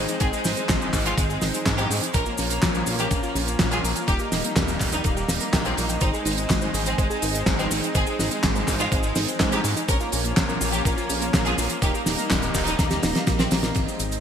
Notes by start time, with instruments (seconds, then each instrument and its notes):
Already playing: analog synth pad G#3 C4 D#4
0.09 violin section G#3, synth arpeggio sound D#4, closed hi-hat, cabasa
0.20 analog synth bass G#1, violin section C4 G#4, synth arpeggio sound C5, kick, closed hi-hat, cabasa
0.33 violin section G#3, synth arpeggio sound G#4, cabasa
0.44 analog synth bass G#1, violin section G#3, synth arpeggio sound D#4, snare, open hi-hat, cabasa
0.57 violin section G#3, synth arpeggio sound C4, closed hi-hat, cabasa
0.69 analog synth bass G#1, synth arpeggio sound G#3, kick, snare, clap, closed hi-hat, cabasa
0.81 violin section G#3, synth arpeggio sound C5, cabasa
0.93 analog synth bass G#1, violin section G#3, synth arpeggio sound G#4, kick, clap, open hi-hat, cabasa
1.05 violin section G#3 F4, synth arpeggio sound D#4, closed hi-hat, cabasa
1.18 analog synth bass G#1, violin section G#3, synth arpeggio sound C5, kick, closed hi-hat, cabasa
1.30 violin section G#3, synth arpeggio sound G#4, cabasa
1.41 analog synth bass G#1, synth arpeggio sound D#4, snare, open hi-hat, cabasa
1.54 violin section G#3, synth arpeggio sound C4, closed hi-hat, cabasa
1.66 analog synth bass G#2, synth arpeggio sound G#3, violin section G#3, kick, snare, clap, closed hi-hat, cabasa
1.78 violin section D#4 G4, synth arpeggio sound C5, closed hi-hat, cabasa
1.90 analog synth bass G#2, violin section G#3, synth arpeggio sound G#4, open hi-hat, cabasa
2.02 violin section G#3, synth arpeggio sound D#4, closed hi-hat, cabasa
2.14 analog synth bass A#1, analog synth pad F3 A#3 C#4, violin section C#4 A#4, synth arpeggio sound A#4, kick, closed hi-hat, cabasa
2.26 violin section A#3, synth arpeggio sound F4, cabasa
2.38 analog synth bass A#1, violin section A#3, synth arpeggio sound C#4, open hi-hat, cabasa
2.50 synth arpeggio sound A#3, violin section A#3, closed hi-hat, cabasa
2.62 analog synth bass A#1, synth arpeggio sound F3, kick, snare, clap, closed hi-hat, cabasa
2.75 violin section A#3, synth arpeggio sound A#4, cabasa
2.86 analog synth bass A#1, violin section A#3, synth arpeggio sound F4, open hi-hat, cabasa
2.99 violin section A#3 G4, synth arpeggio sound C#4, closed hi-hat, cabasa
3.11 analog synth bass A#1, violin section A#3, synth arpeggio sound A#4, kick, closed hi-hat, cabasa
3.23 violin section A#3, synth arpeggio sound F4, cabasa
3.35 analog synth bass A#1, synth arpeggio sound C#4, open hi-hat, cabasa
3.47 synth arpeggio sound A#3, violin section A#3, closed hi-hat, cabasa
3.59 analog synth bass A#1, synth arpeggio sound F3, violin section A#3, kick, snare, clap, closed hi-hat, cabasa
3.71 violin section F4 G#4, synth arpeggio sound A#4, closed hi-hat, cabasa
3.84 analog synth bass A#1, violin section A#3, synth arpeggio sound F4, open hi-hat, cabasa
3.96 violin section A#3, synth arpeggio sound C#4, closed hi-hat, cabasa
4.08 analog synth bass D#1, analog synth pad G3 D#4, violin section D#4 G4, synth arpeggio sound A#4, kick, closed hi-hat, cabasa
4.19 violin section A#3, synth arpeggio sound G4, cabasa
4.32 analog synth bass D#1, violin section A#3, synth arpeggio sound D#4, snare, open hi-hat, cabasa
4.44 synth arpeggio sound A#3, violin section A#3, closed hi-hat, cabasa
4.56 analog synth bass D#1, synth arpeggio sound G3, kick, snare, clap, closed hi-hat, cabasa
4.68 violin section A#3, synth arpeggio sound A#4, cabasa
4.80 analog synth bass D#1, violin section A#3, synth arpeggio sound G4, kick, clap, open hi-hat, cabasa
4.92 violin section G3 D#4, synth arpeggio sound D#4, closed hi-hat, cabasa
5.04 analog synth bass D#1, violin section A#3, synth arpeggio sound A#4, kick, closed hi-hat, cabasa
5.17 violin section A#3, synth arpeggio sound G4, cabasa
5.28 analog synth bass D#1, synth arpeggio sound A#4, snare, open hi-hat, cabasa
5.40 violin section A#3, synth arpeggio sound A#4, closed hi-hat, cabasa
5.53 analog synth bass A#1, violin section A#3, synth arpeggio sound G5, kick, snare, clap, closed hi-hat, cabasa
5.65 violin section C4, synth arpeggio sound G5, closed hi-hat, cabasa
5.77 analog synth bass A#1, synth arpeggio sound G3, violin section A#3, open hi-hat, cabasa
5.89 violin section A#3, synth arpeggio sound G5, closed hi-hat, cabasa
6.01 analog synth bass G#1, analog synth pad G#3 C4, violin section C4 D#4, synth arpeggio sound C5, kick, closed hi-hat, cabasa
6.14 violin section G#3, synth arpeggio sound G#4, cabasa
6.25 analog synth bass G#1, violin section G#3, synth arpeggio sound D#4, open hi-hat, cabasa
6.38 violin section G#3, synth arpeggio sound C4, closed hi-hat, cabasa
6.50 analog synth bass G#1, synth arpeggio sound G#3, kick, snare, clap, closed hi-hat, cabasa
6.61 violin section G#3, synth arpeggio sound C5, cabasa
6.74 analog synth bass G#1, violin section G#3, synth arpeggio sound G#4, open hi-hat, cabasa
6.86 violin section G#3 C4, synth arpeggio sound D#4, closed hi-hat, cabasa
6.98 analog synth bass G#1, violin section G#3, synth arpeggio sound C5, kick, closed hi-hat, cabasa
7.10 violin section G#3, synth arpeggio sound G#4, cabasa
7.22 analog synth bass G#1, synth arpeggio sound D#4, open hi-hat, cabasa
7.34 violin section G#3, synth arpeggio sound C4, closed hi-hat, cabasa
7.46 analog synth bass G#1, synth arpeggio sound G#3, violin section G#3, kick, snare, clap, closed hi-hat, cabasa
7.59 violin section G#3 C4, synth arpeggio sound C5, closed hi-hat, cabasa
7.71 analog synth bass G#1, violin section G#3, synth arpeggio sound G#4, open hi-hat, cabasa
7.83 violin section G#3, synth arpeggio sound D#4, closed hi-hat, cabasa
7.95 analog synth bass G#1, violin section C4 G#4, synth arpeggio sound C5, kick, closed hi-hat, cabasa
8.07 violin section G#3, synth arpeggio sound G#4, cabasa
8.19 analog synth bass G#1, violin section G#3, synth arpeggio sound D#4, snare, open hi-hat, cabasa
8.31 violin section G#3, synth arpeggio sound C4, closed hi-hat, cabasa
8.43 analog synth bass G#1, synth arpeggio sound G#3, kick, snare, clap, closed hi-hat, cabasa
8.55 violin section G#3, synth arpeggio sound C5, cabasa
8.68 analog synth bass G#1, violin section G#3, synth arpeggio sound G#4, kick, clap, open hi-hat, cabasa
8.79 violin section G#3 F4, synth arpeggio sound D#4, closed hi-hat, cabasa
8.92 analog synth bass G#1, violin section G#3, synth arpeggio sound C5, kick, closed hi-hat, cabasa
9.03 violin section G#3, synth arpeggio sound G#4, cabasa
9.16 analog synth bass G#1, synth arpeggio sound D#4, snare, open hi-hat, cabasa
9.28 violin section G#3, synth arpeggio sound C4, closed hi-hat, cabasa
9.40 analog synth bass G#2, synth arpeggio sound G#3, violin section G#3, kick, snare, clap, closed hi-hat, cabasa
9.52 violin section D#4 G4, synth arpeggio sound C5, closed hi-hat, cabasa
9.64 analog synth bass G#2, violin section G#3, synth arpeggio sound G#4, open hi-hat, cabasa
9.76 violin section G#3, synth arpeggio sound D#4, closed hi-hat, cabasa
9.88 analog synth bass A#1, analog synth pad F3 A#3 C#4, violin section C#4 A#4, synth arpeggio sound A#4, kick, closed hi-hat, cabasa
10.00 violin section A#3, synth arpeggio sound F4, cabasa
10.12 analog synth bass A#1, violin section A#3, synth arpeggio sound C#4, open hi-hat, cabasa
10.25 violin section A#3, synth arpeggio sound A#3, closed hi-hat, cabasa
10.36 analog synth bass A#1, synth arpeggio sound F3, kick, snare, clap, closed hi-hat, cabasa
10.49 violin section A#3, synth arpeggio sound A#4, cabasa
10.61 analog synth bass A#1, violin section A#3, synth arpeggio sound F4, open hi-hat, cabasa
10.72 violin section A#3 G4, synth arpeggio sound C#4, closed hi-hat, cabasa
10.85 analog synth bass A#1, violin section A#3, synth arpeggio sound A#4, kick, closed hi-hat, cabasa
10.97 violin section A#3, synth arpeggio sound F4, cabasa
11.09 analog synth bass A#1, synth arpeggio sound C#4, open hi-hat, cabasa
11.21 violin section A#3, synth arpeggio sound A#3, closed hi-hat, cabasa
11.34 analog synth bass A#1, synth arpeggio sound F3, violin section A#3, kick, snare, clap, closed hi-hat, cabasa
11.45 violin section F4 G#4, synth arpeggio sound A#4, closed hi-hat, cabasa
11.58 analog synth bass A#1, violin section A#3, synth arpeggio sound F4, open hi-hat, cabasa
11.69 violin section A#3, synth arpeggio sound C#4, closed hi-hat, cabasa
11.82 analog synth bass D#1, analog synth pad G3 D#4, violin section D#4 G4, synth arpeggio sound A#4, kick, closed hi-hat, cabasa
11.94 violin section A#3, synth arpeggio sound G4, cabasa
12.06 analog synth bass D#1, violin section A#3, synth arpeggio sound D#4, snare, open hi-hat, cabasa
12.18 violin section A#3, synth arpeggio sound A#3, closed hi-hat, cabasa
12.31 analog synth bass D#1, synth arpeggio sound G3, kick, snare, clap, closed hi-hat, cabasa
12.42 violin section A#3, synth arpeggio sound A#4, closed hi-hat, cabasa
12.54 analog synth bass D#1, violin section A#3, synth arpeggio sound G4, kick, clap, open hi-hat, cabasa
12.67 violin section G3 D#4, synth arpeggio sound D#4, closed hi-hat, cabasa
12.79 analog synth bass D#1, violin section A#3, synth arpeggio sound A#4, kick, snare, closed hi-hat, cabasa
12.91 violin section A#3, synth arpeggio sound G4, snare, closed hi-hat, cabasa
13.03 analog synth bass D#1, synth arpeggio sound D#4, snare, open hi-hat, cabasa
13.15 violin section A#3, synth arpeggio sound A#3, snare, closed hi-hat, cabasa
13.27 analog synth bass A#1, synth arpeggio sound G3, violin section A#3, kick, snare, closed hi-hat, cabasa
13.39 violin section C4, synth arpeggio sound A#4, snare, closed hi-hat, cabasa
13.51 analog synth bass A#1, violin section A#3, synth arpeggio sound G4, snare, open hi-hat, cabasa
13.63 violin section A#3, synth arpeggio sound D#4, snare, closed hi-hat, cabasa
13.75 analog synth bass G#1, analog synth pad G#3 C4 D#4, kick, closed hi-hat, crash, cabasa
13.88 cabasa
13.99 analog synth bass G#1, closed hi-hat, cabasa
14.12 closed hi-hat, cabasa